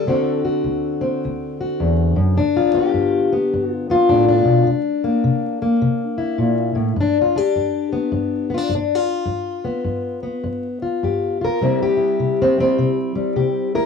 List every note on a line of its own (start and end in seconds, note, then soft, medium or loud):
0.00 0.44 A4 loud
0.07 0.60 D2 medium
0.07 4.68 D3 medium
0.07 1.00 C4 medium
0.07 0.43 F#4 medium
0.45 1.58 F#4 soft
0.64 1.17 D2 medium
1.01 2.34 C4 medium
1.25 1.76 D2 medium
1.61 2.35 F#4 soft
1.80 2.15 E2 medium
2.16 2.37 F#2 medium
2.37 2.90 G2 medium
2.37 2.74 D4 medium
2.57 3.33 F4 medium
2.74 3.31 B3 soft
2.74 3.72 G4 medium
2.94 3.47 G2 medium
3.33 3.89 B3 soft
3.54 4.06 G2 medium
3.72 3.91 F4 medium
3.90 4.65 B3 soft
3.90 4.68 F4 loud
4.09 4.45 A2 medium
4.09 4.27 D4 medium
4.29 6.02 D4 medium
4.45 4.67 B2 medium
4.67 5.21 C3 medium
5.04 5.61 A#3 soft
5.24 5.78 C3 medium
5.62 6.96 A#3 soft
5.82 6.36 C3 medium
6.18 6.95 E4 soft
6.38 6.75 A#2 medium
6.75 6.96 A2 medium
6.96 7.51 G2 medium
7.00 7.19 D4 medium
7.21 7.38 F4 medium
7.36 8.49 D4 soft
7.36 8.53 G4 medium
7.56 8.09 G2 medium
7.93 8.49 B3 soft
8.12 8.66 G2 medium
8.50 8.58 B3 soft
8.54 8.73 D4 soft
8.54 8.73 F4 medium
8.69 9.24 G2 medium
8.75 8.95 D4 medium
8.95 10.67 F4 medium
9.25 9.81 G2 medium
9.65 10.22 B3 soft
9.84 10.40 G2 medium
10.23 11.58 B3 soft
10.44 10.98 G2 medium
10.82 11.40 F4 soft
11.03 11.57 G2 medium
11.03 11.44 G4 soft
11.41 11.59 F4 soft
11.41 11.82 A#4 medium
11.61 12.15 C3 medium
11.61 12.58 G3 soft
11.61 12.41 C4 soft
11.61 11.97 E4 soft
11.83 12.97 G4 medium
11.97 13.71 E4 soft
12.20 12.73 C3 medium
12.42 12.59 C4 medium
12.58 13.15 G3 soft
12.58 13.75 C4 medium
12.79 13.31 C3 medium
13.15 13.86 G3 soft
13.36 13.86 C3 medium
13.36 13.75 G4 soft
13.75 13.86 E4 soft
13.75 13.86 A#4 medium